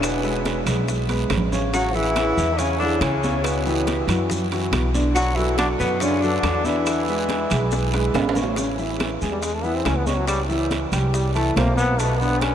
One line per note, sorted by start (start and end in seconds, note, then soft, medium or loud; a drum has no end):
0.00 0.61 E1 medium
0.00 0.67 B2 medium
0.00 0.16 D3 medium
0.00 0.16 D4 medium
0.00 0.16 D5 medium
0.00 high bongo medium
0.00 high conga soft
0.00 high timbale medium
0.00 long guiro medium
0.00 claves medium
0.00 maracas medium
0.04 0.68 B3 medium
0.23 0.59 G#3 medium
0.23 0.59 G#4 medium
0.23 0.59 B4 medium
0.23 high bongo soft
0.23 high conga soft
0.23 maracas soft
0.45 high bongo medium
0.45 high conga medium
0.45 high timbale medium
0.45 short guiro medium
0.45 maracas soft
0.66 1.27 B1 loud
0.66 1.02 G#3 medium
0.66 1.02 G#4 medium
0.66 1.02 B4 medium
0.66 high bongo soft
0.66 high conga soft
0.66 low conga medium
0.66 high timbale medium
0.66 short guiro medium
0.66 claves medium
0.66 maracas medium
0.88 high bongo medium
0.88 high conga soft
0.88 long guiro medium
0.88 maracas medium
1.09 1.45 G#3 medium
1.09 1.45 G#4 medium
1.09 1.45 B4 medium
1.09 high bongo soft
1.09 high conga medium
1.09 high timbale medium
1.09 maracas soft
1.30 2.31 A1 medium
1.30 high bongo medium
1.30 low bongo medium
1.30 high timbale medium
1.30 low timbale medium
1.30 short guiro medium
1.30 claves medium
1.30 maracas soft
1.37 low conga loud
1.52 1.70 C#3 medium
1.52 1.70 C#4 medium
1.52 1.70 C#5 medium
1.52 low conga medium
1.52 short guiro medium
1.52 maracas medium
1.73 1.91 C#3 medium
1.73 1.95 F#3 medium
1.73 1.91 C#4 medium
1.73 1.97 F#4 loud
1.73 1.91 C#5 medium
1.73 high bongo medium
1.73 high conga soft
1.73 high timbale medium
1.73 long guiro medium
1.73 maracas medium
1.93 2.58 E3 loud
1.93 2.12 E3 medium
1.93 2.13 E4 medium
1.93 2.59 E4 loud
1.93 2.13 G#4 medium
1.93 high bongo soft
1.93 high conga soft
1.93 maracas soft
2.16 2.52 E3 medium
2.16 2.52 E4 medium
2.16 2.52 G#4 medium
2.16 high bongo medium
2.16 high conga medium
2.16 high timbale medium
2.16 short guiro medium
2.16 claves medium
2.16 maracas soft
2.38 2.98 E2 medium
2.38 high bongo soft
2.38 high conga soft
2.38 short guiro medium
2.38 maracas medium
2.57 2.77 C#3 medium
2.57 2.79 C#4 loud
2.57 2.77 C#4 medium
2.57 2.77 C#5 medium
2.57 high bongo medium
2.57 high conga soft
2.57 high timbale medium
2.57 long guiro medium
2.57 maracas medium
2.78 3.01 D3 medium
2.78 3.16 E3 medium
2.78 3.02 D4 medium
2.78 3.16 E4 medium
2.78 high bongo soft
2.78 high conga soft
2.78 maracas soft
2.82 3.16 G#4 medium
3.00 4.02 C#2 medium
3.00 3.44 C#3 medium
3.00 3.45 C#4 medium
3.00 high bongo medium
3.00 low bongo medium
3.00 high conga soft
3.00 high timbale medium
3.00 short guiro medium
3.00 claves medium
3.00 maracas soft
3.23 3.59 C#3 medium
3.23 3.59 C#4 medium
3.23 3.59 C#5 medium
3.23 high conga medium
3.23 short guiro medium
3.23 maracas medium
3.43 4.08 B2 medium
3.43 4.08 B3 medium
3.43 high bongo medium
3.43 high conga soft
3.43 high timbale medium
3.43 long guiro medium
3.43 claves medium
3.43 maracas medium
3.65 4.01 E3 medium
3.65 4.01 E4 medium
3.65 4.01 G4 medium
3.65 high bongo soft
3.65 high conga soft
3.65 maracas soft
3.87 high bongo medium
3.87 high conga medium
3.87 high timbale medium
3.87 short guiro medium
3.87 maracas soft
4.07 4.68 F#2 loud
4.07 4.44 E3 medium
4.07 4.45 E4 medium
4.07 4.45 F#4 medium
4.07 high bongo soft
4.07 high conga soft
4.07 low conga medium
4.07 high timbale medium
4.07 short guiro medium
4.07 claves medium
4.07 maracas medium
4.30 high bongo medium
4.30 high conga soft
4.30 low conga medium
4.30 long guiro medium
4.30 maracas medium
4.52 4.87 E3 medium
4.52 4.88 E4 medium
4.52 4.88 F#4 medium
4.52 high bongo soft
4.52 high conga soft
4.52 high timbale medium
4.52 maracas soft
4.72 5.73 B1 medium
4.72 high bongo medium
4.72 low bongo medium
4.72 high conga medium
4.72 high timbale medium
4.72 short guiro medium
4.72 claves medium
4.72 maracas soft
4.94 5.12 D3 medium
4.94 5.12 D4 medium
4.94 5.12 D5 medium
4.94 high conga medium
4.94 short guiro medium
4.94 maracas medium
5.15 5.33 D3 medium
5.15 5.38 F#3 loud
5.15 5.33 D4 medium
5.15 5.37 F#4 loud
5.15 5.34 D5 medium
5.15 high bongo medium
5.15 high timbale medium
5.15 long guiro medium
5.15 maracas medium
5.36 5.58 E3 medium
5.36 5.54 F#3 medium
5.36 5.58 E4 loud
5.36 5.54 F#4 medium
5.36 5.55 A4 medium
5.36 high bongo soft
5.36 high conga soft
5.36 maracas soft
5.58 5.68 D3 medium
5.58 5.94 F#3 medium
5.58 5.68 D4 medium
5.58 5.94 F#4 medium
5.58 5.94 A4 medium
5.58 high bongo medium
5.58 high conga medium
5.58 high timbale loud
5.58 short guiro medium
5.58 claves medium
5.58 maracas soft
5.79 6.40 F#2 loud
5.79 6.04 B2 medium
5.79 6.02 B3 loud
5.79 high bongo soft
5.79 high conga soft
5.79 short guiro medium
5.79 maracas medium
6.00 6.25 C#3 medium
6.00 6.19 D3 medium
6.00 6.22 C#4 medium
6.00 6.19 D4 medium
6.00 6.19 D5 medium
6.00 high bongo medium
6.00 high conga soft
6.00 high timbale medium
6.00 long guiro medium
6.00 maracas medium
6.21 6.68 D3 medium
6.21 6.58 F#3 medium
6.21 6.67 D4 loud
6.21 6.58 F#4 medium
6.21 6.58 A4 medium
6.21 high bongo soft
6.21 high conga soft
6.21 maracas soft
6.43 7.44 E2 medium
6.43 high bongo medium
6.43 low bongo medium
6.43 high conga soft
6.43 high timbale medium
6.43 short guiro medium
6.43 claves medium
6.43 maracas soft
6.65 7.00 D3 medium
6.65 8.15 E3 medium
6.65 7.01 D4 medium
6.65 8.15 E4 loud
6.65 7.01 D5 medium
6.65 high conga medium
6.65 short guiro medium
6.65 maracas medium
6.86 high bongo medium
6.86 high conga soft
6.86 high timbale medium
6.86 long guiro medium
6.86 claves medium
6.86 maracas medium
7.08 7.44 G#3 medium
7.08 7.44 G#4 medium
7.08 7.44 B4 medium
7.08 high bongo soft
7.08 high conga soft
7.08 maracas soft
7.29 high bongo medium
7.29 high conga medium
7.29 high timbale medium
7.29 short guiro medium
7.29 maracas soft
7.50 8.11 B1 loud
7.50 7.86 G#3 medium
7.50 7.86 G#4 medium
7.50 7.87 B4 medium
7.50 high bongo soft
7.50 high conga soft
7.50 low conga medium
7.50 high timbale medium
7.50 short guiro medium
7.50 claves medium
7.50 maracas medium
7.71 high bongo medium
7.71 high conga soft
7.71 long guiro medium
7.71 maracas medium
7.93 8.29 G#3 medium
7.93 8.29 G#4 medium
7.93 8.29 B4 medium
7.93 high bongo medium
7.93 high conga soft
7.93 high timbale medium
7.93 maracas soft
8.14 9.16 A1 medium
8.14 low bongo medium
8.14 high conga medium
8.14 high timbale medium
8.14 short guiro medium
8.14 claves medium
8.14 maracas soft
8.29 high timbale medium
8.35 8.54 C#3 medium
8.35 8.54 C#4 medium
8.35 8.54 C#5 medium
8.35 low bongo medium
8.35 high conga medium
8.35 short guiro medium
8.35 maracas medium
8.43 low timbale medium
8.56 8.75 C#3 medium
8.56 8.75 C#4 medium
8.56 8.76 C#5 medium
8.56 high bongo medium
8.56 high conga soft
8.56 high timbale medium
8.56 long guiro medium
8.56 maracas medium
8.78 9.14 E3 medium
8.78 9.14 E4 medium
8.78 9.14 E5 medium
8.78 high bongo soft
8.78 high conga soft
8.78 maracas soft
8.99 high bongo medium
8.99 high conga medium
8.99 high timbale medium
8.99 short guiro medium
8.99 claves medium
8.99 maracas soft
9.21 9.82 E2 medium
9.21 9.57 G#3 medium
9.21 9.57 G#4 medium
9.21 9.57 G#5 medium
9.21 high bongo soft
9.21 high conga soft
9.21 short guiro medium
9.21 maracas medium
9.31 9.44 G3 medium
9.42 9.55 G#3 medium
9.42 high bongo medium
9.42 high conga soft
9.42 high timbale medium
9.42 long guiro medium
9.42 maracas medium
9.54 9.66 A3 medium
9.64 9.99 E3 medium
9.64 9.76 B3 medium
9.64 10.00 E4 medium
9.64 10.00 E5 medium
9.64 high bongo soft
9.64 high conga soft
9.64 maracas soft
9.75 9.87 C4 medium
9.85 10.86 C#2 medium
9.85 9.98 C#4 medium
9.85 high bongo medium
9.85 low bongo medium
9.85 high conga soft
9.85 high timbale medium
9.85 low timbale medium
9.85 short guiro medium
9.85 claves medium
9.85 maracas soft
9.96 10.08 B3 medium
10.06 10.18 G#3 medium
10.06 10.42 C#4 medium
10.06 10.42 C#5 medium
10.06 10.42 C#6 medium
10.06 high conga medium
10.06 short guiro medium
10.06 maracas medium
10.16 10.27 F#3 medium
10.27 10.40 G3 medium
10.27 high bongo medium
10.27 high conga soft
10.27 high timbale medium
10.27 long guiro medium
10.27 claves medium
10.27 maracas medium
10.49 10.85 E3 medium
10.49 10.85 E4 medium
10.49 10.85 E5 medium
10.49 high bongo soft
10.49 high conga soft
10.49 maracas soft
10.71 high bongo medium
10.71 high conga medium
10.71 high timbale medium
10.71 short guiro medium
10.71 maracas soft
10.92 11.53 C2 medium
10.92 11.28 G3 medium
10.92 11.28 G4 medium
10.92 11.28 G5 medium
10.92 high bongo soft
10.92 high conga soft
10.92 low conga medium
10.92 high timbale medium
10.92 short guiro medium
10.92 claves medium
10.92 maracas medium
11.14 11.34 G3 medium
11.14 high bongo medium
11.14 high conga soft
11.14 long guiro medium
11.14 maracas medium
11.35 11.53 E3 medium
11.35 11.58 A3 medium
11.35 11.53 E4 medium
11.35 11.53 E5 medium
11.35 high bongo soft
11.35 high conga soft
11.35 high timbale medium
11.35 maracas soft
11.56 12.55 B1 medium
11.56 11.92 A#2 medium
11.56 11.76 A#3 medium
11.56 11.92 C4 medium
11.56 11.92 C5 medium
11.56 high bongo medium
11.56 low bongo medium
11.56 high conga medium
11.56 high timbale medium
11.56 low timbale medium
11.56 short guiro medium
11.56 claves medium
11.56 maracas soft
11.77 12.01 B3 loud
11.77 high conga medium
11.77 short guiro medium
11.77 maracas medium
11.99 12.17 B2 medium
11.99 12.21 A3 medium
11.99 12.18 B3 medium
11.99 12.18 B4 medium
11.99 high bongo medium
11.99 high conga soft
11.99 high timbale medium
11.99 long guiro medium
11.99 maracas medium
12.20 12.55 D3 medium
12.20 12.44 B3 medium
12.20 12.55 D4 medium
12.20 12.55 D5 medium
12.20 high bongo soft
12.20 high conga soft
12.20 maracas soft
12.41 12.55 C#4 medium
12.41 high bongo medium
12.41 high conga medium
12.41 high timbale medium
12.41 short guiro medium
12.41 claves medium
12.41 maracas soft